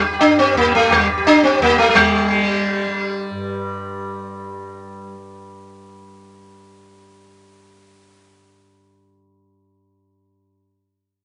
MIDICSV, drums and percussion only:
0, 0, Header, 1, 2, 480
1, 0, Start_track
1, 0, Tempo, 349447
1, 271, Time_signature, 5, 2, 24, 8
1, 4586, Tempo, 342661
1, 15658, End_track
2, 0, Start_track
2, 0, Title_t, "Tabla"
2, 267, Note_on_c, 9, 60, 86
2, 404, Note_off_c, 9, 60, 0
2, 511, Note_on_c, 9, 62, 84
2, 649, Note_off_c, 9, 62, 0
2, 750, Note_on_c, 9, 63, 87
2, 750, Note_on_c, 9, 64, 77
2, 887, Note_off_c, 9, 63, 0
2, 887, Note_off_c, 9, 64, 0
2, 993, Note_on_c, 9, 62, 82
2, 1130, Note_off_c, 9, 62, 0
2, 1242, Note_on_c, 9, 60, 110
2, 1242, Note_on_c, 9, 64, 103
2, 1380, Note_off_c, 9, 60, 0
2, 1380, Note_off_c, 9, 64, 0
2, 1721, Note_on_c, 9, 60, 85
2, 1859, Note_off_c, 9, 60, 0
2, 1965, Note_on_c, 9, 62, 90
2, 2103, Note_off_c, 9, 62, 0
2, 2200, Note_on_c, 9, 63, 86
2, 2200, Note_on_c, 9, 64, 77
2, 2337, Note_off_c, 9, 63, 0
2, 2337, Note_off_c, 9, 64, 0
2, 2436, Note_on_c, 9, 62, 84
2, 2574, Note_off_c, 9, 62, 0
2, 2687, Note_on_c, 9, 60, 117
2, 2687, Note_on_c, 9, 64, 102
2, 2824, Note_off_c, 9, 60, 0
2, 2824, Note_off_c, 9, 64, 0
2, 15658, End_track
0, 0, End_of_file